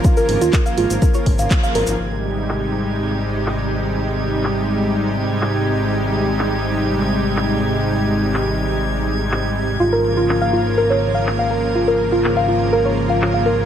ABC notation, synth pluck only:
X:1
M:4/4
L:1/16
Q:1/4=123
K:Ab
V:1 name="Synth pluck"
F B z F z f F z B d z f z f B z | z16 | z16 | z16 |
z16 | F B z F z f F z B d z f z f B z | F B z F z f F z B d z f z f B z |]